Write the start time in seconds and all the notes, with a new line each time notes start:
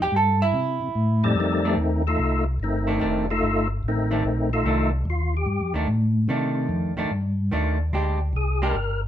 0.02 G4 G5
0.12 G2
0.16 A4 A5
0.42 E4 E5
0.54 C3
0.82 C3
0.95 A2
1.23 F2 G3 C4 D#4 A4 D5
1.35 F2 A3
1.40 D#3 C4 D#4
1.65 D#3 A3 D4
1.77 D#2
2.07 A3 D#4 F4 A4
2.19 C2
2.60 G1 D#4
2.64 D#3 A3 C4
2.87 D#3 A3 D4
3.00 F1 D#3 A3 D4
3.31 A3 D#4 F4 A4
3.42 G1
3.83 A1
3.88 D#3 A3 C4 D#4
4.11 D#3 A3 D4
4.24 A#1
4.53 A3 D#4 F4 A4
4.64 C2 D#3 A3 D4
5.05 D#2
5.10 F4
5.37 G4
5.46 G2
5.61 F2
5.74 D#2 D#3 A3 D4
5.87 A2
6.28 C3 D#3 A3 D4
6.69 F2
6.97 F2 D#3 A3 D4
7.11 G2
7.51 D#2 D#3 A3 D4
7.93 D2 G#3 D4 G4
8.33 C2 G#4
8.62 G#3 D4 G4 A#4
8.73 G1